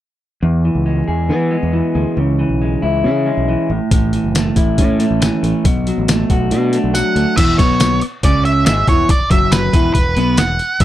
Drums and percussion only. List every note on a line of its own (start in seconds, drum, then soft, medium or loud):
3.91 kick loud
3.91 closed hi-hat medium
4.13 closed hi-hat medium
4.35 snare medium
4.35 closed hi-hat medium
4.35 tambourine medium
4.56 kick medium
4.56 closed hi-hat medium
4.78 kick medium
4.78 closed hi-hat medium
5.00 closed hi-hat medium
5.22 snare medium
5.22 closed hi-hat medium
5.22 tambourine medium
5.44 closed hi-hat medium
5.65 kick loud
5.65 closed hi-hat medium
5.87 closed hi-hat medium
6.08 snare loud
6.08 closed hi-hat medium
6.08 tambourine medium
6.30 kick medium
6.30 closed hi-hat medium
6.51 closed hi-hat medium
6.73 closed hi-hat medium
6.95 closed hi-hat medium
6.95 tambourine medium
7.16 closed hi-hat soft
7.37 kick loud
7.37 closed hi-hat medium
7.37 crash medium
7.59 kick loud
7.59 closed hi-hat medium
7.80 snare loud
7.80 closed hi-hat medium
7.80 tambourine loud
8.01 closed hi-hat medium
8.23 kick medium
8.23 closed hi-hat medium
8.45 closed hi-hat medium
8.66 snare loud
8.66 closed hi-hat medium
8.66 tambourine loud
8.88 kick medium
8.88 closed hi-hat medium
9.09 kick loud
9.09 closed hi-hat medium
9.31 kick loud
9.31 closed hi-hat medium
9.52 snare loud
9.52 closed hi-hat medium
9.52 tambourine loud
9.73 kick loud
9.73 closed hi-hat medium
9.95 kick medium
9.95 closed hi-hat medium
10.17 closed hi-hat medium
10.37 snare medium
10.37 closed hi-hat medium
10.37 tambourine medium
10.59 closed hi-hat soft
10.80 kick loud
10.80 closed hi-hat medium